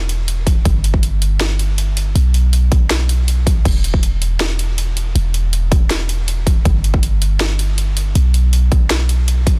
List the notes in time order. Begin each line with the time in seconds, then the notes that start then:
Already playing: E1
0.09 closed hi-hat
0.28 closed hi-hat
0.47 kick, closed hi-hat
0.65 G1, kick, closed hi-hat
0.84 closed hi-hat
0.94 kick
1.03 closed hi-hat
1.22 closed hi-hat
1.41 snare, closed hi-hat
1.59 closed hi-hat
1.78 closed hi-hat
1.97 closed hi-hat
2.15 B1, closed hi-hat
2.34 closed hi-hat
2.53 closed hi-hat
2.72 kick, closed hi-hat
2.90 snare, closed hi-hat
3.09 closed hi-hat
3.28 closed hi-hat
3.47 kick, closed hi-hat
3.65 E1, kick, closed hi-hat, crash
3.84 closed hi-hat
3.94 kick
4.03 closed hi-hat
4.22 closed hi-hat
4.40 snare, closed hi-hat
4.59 closed hi-hat
4.78 closed hi-hat
4.97 closed hi-hat
5.15 E1, closed hi-hat
5.34 closed hi-hat
5.53 closed hi-hat
5.72 kick, closed hi-hat
5.90 snare, closed hi-hat
6.09 closed hi-hat
6.28 closed hi-hat
6.47 kick, closed hi-hat
6.65 G1, kick, closed hi-hat
6.84 closed hi-hat
6.94 kick
7.03 closed hi-hat
7.22 closed hi-hat
7.40 snare, closed hi-hat
7.59 closed hi-hat
7.78 closed hi-hat
7.97 closed hi-hat
8.15 B1, closed hi-hat
8.34 closed hi-hat
8.53 closed hi-hat
8.72 kick, closed hi-hat
8.90 snare, closed hi-hat
9.09 closed hi-hat
9.28 closed hi-hat
9.47 kick, closed hi-hat